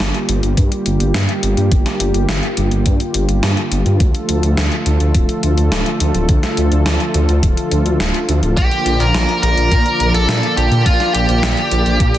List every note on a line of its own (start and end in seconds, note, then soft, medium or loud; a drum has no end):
0.00 0.12 G1 loud
0.00 12.18 D3 medium
0.00 3.96 G3 medium
0.00 3.96 A#3 medium
0.00 12.18 F4 medium
0.00 3.96 G4 medium
0.00 snare loud
0.00 closed hi-hat medium
0.14 closed hi-hat soft
0.29 0.41 G1 medium
0.29 closed hi-hat loud
0.43 0.55 G1 medium
0.43 closed hi-hat soft
0.57 0.69 G2 loud
0.57 kick loud
0.57 closed hi-hat medium
0.72 closed hi-hat soft
0.86 0.98 G1 loud
0.86 closed hi-hat loud
1.00 1.12 G1 medium
1.00 closed hi-hat soft
1.14 1.27 G2 loud
1.14 snare loud
1.14 closed hi-hat medium
1.29 closed hi-hat soft
1.43 1.55 G1 medium
1.43 closed hi-hat medium
1.57 1.69 G2 medium
1.57 closed hi-hat soft
1.72 1.84 G1 medium
1.72 kick loud
1.72 closed hi-hat medium
1.86 snare soft
1.86 closed hi-hat soft
2.00 2.12 G1 medium
2.00 closed hi-hat medium
2.14 2.27 G1 medium
2.14 closed hi-hat soft
2.29 2.41 G1 loud
2.29 snare loud
2.29 closed hi-hat medium
2.43 closed hi-hat soft
2.57 2.70 G1 loud
2.57 closed hi-hat loud
2.71 2.84 G1 medium
2.71 closed hi-hat soft
2.86 2.98 G2 loud
2.86 kick loud
2.86 closed hi-hat medium
3.00 closed hi-hat soft
3.14 3.27 G1 loud
3.14 closed hi-hat medium
3.29 3.41 G1 medium
3.29 closed hi-hat soft
3.43 3.55 G2 loud
3.43 snare loud
3.43 closed hi-hat medium
3.57 closed hi-hat soft
3.72 3.84 G1 medium
3.72 closed hi-hat loud
3.86 3.98 G2 medium
3.86 closed hi-hat soft
4.00 4.12 D2 loud
4.00 12.18 F3 medium
4.00 8.53 A3 medium
4.00 8.53 A4 medium
4.00 kick loud
4.00 closed hi-hat medium
4.15 closed hi-hat soft
4.29 4.41 D2 medium
4.29 closed hi-hat medium
4.43 4.55 D2 medium
4.43 closed hi-hat soft
4.57 4.69 D2 loud
4.57 snare loud
4.57 closed hi-hat medium
4.72 closed hi-hat soft
4.86 4.98 D2 loud
4.86 closed hi-hat medium
5.00 5.12 D2 medium
5.00 closed hi-hat soft
5.15 5.27 D1 loud
5.15 kick loud
5.15 closed hi-hat medium
5.29 closed hi-hat soft
5.43 5.55 D2 loud
5.43 closed hi-hat medium
5.57 5.70 D2 medium
5.57 closed hi-hat soft
5.72 5.84 D1 loud
5.72 snare loud
5.72 closed hi-hat medium
5.86 closed hi-hat soft
6.00 6.12 D2 medium
6.00 closed hi-hat loud
6.14 6.27 D1 medium
6.14 closed hi-hat soft
6.29 6.41 D2 loud
6.29 kick loud
6.29 closed hi-hat medium
6.43 snare soft
6.43 closed hi-hat soft
6.57 6.70 D2 medium
6.57 closed hi-hat medium
6.72 6.84 D2 medium
6.72 closed hi-hat soft
6.86 6.98 D2 loud
6.86 snare loud
6.86 closed hi-hat medium
7.00 closed hi-hat soft
7.14 7.27 D2 medium
7.14 closed hi-hat medium
7.29 7.41 D2 medium
7.29 closed hi-hat soft
7.43 7.55 D1 loud
7.43 kick loud
7.43 closed hi-hat medium
7.57 closed hi-hat soft
7.72 7.84 D2 loud
7.72 closed hi-hat medium
7.86 7.98 D2 medium
7.86 closed hi-hat soft
8.00 8.12 D1 loud
8.00 snare loud
8.00 closed hi-hat medium
8.14 closed hi-hat soft
8.29 8.41 D2 medium
8.29 closed hi-hat medium
8.43 8.55 D1 medium
8.43 closed hi-hat soft
8.57 8.70 A#1 loud
8.57 12.18 A#3 medium
8.57 9.02 G4 loud
8.57 12.18 D5 medium
8.57 kick loud
8.57 closed hi-hat medium
8.71 closed hi-hat soft
8.86 8.98 A#1 loud
8.86 closed hi-hat medium
9.00 9.12 A#1 medium
9.00 9.42 A#4 loud
9.00 closed hi-hat soft
9.14 9.26 A#1 loud
9.14 snare loud
9.14 closed hi-hat medium
9.29 closed hi-hat soft
9.43 9.55 A#1 loud
9.43 10.14 A#4 loud
9.43 closed hi-hat medium
9.57 9.69 A#1 medium
9.57 closed hi-hat soft
9.72 9.84 A#2 loud
9.72 kick loud
9.72 closed hi-hat medium
9.86 closed hi-hat soft
10.00 10.12 A#1 loud
10.00 closed hi-hat medium
10.14 10.27 A#1 medium
10.14 10.54 A4 loud
10.14 closed hi-hat soft
10.29 10.41 A#2 loud
10.29 snare loud
10.29 closed hi-hat medium
10.43 closed hi-hat soft
10.57 10.69 A#1 medium
10.57 10.84 G4 medium
10.57 closed hi-hat medium
10.71 10.84 A#2 medium
10.71 closed hi-hat soft
10.86 10.98 A#1 loud
10.86 11.14 F4 medium
10.86 kick loud
10.86 closed hi-hat medium
11.00 snare soft
11.00 closed hi-hat soft
11.14 11.27 A#1 medium
11.14 12.18 G4 medium
11.14 closed hi-hat medium
11.29 11.41 A#1 medium
11.29 closed hi-hat soft
11.43 11.55 A#1 loud
11.43 snare loud
11.43 closed hi-hat medium
11.57 closed hi-hat soft
11.71 11.84 A#1 loud
11.71 closed hi-hat medium
11.86 11.98 A#1 medium
11.86 closed hi-hat soft
12.00 12.12 A#2 loud
12.00 kick loud
12.00 closed hi-hat medium
12.14 closed hi-hat soft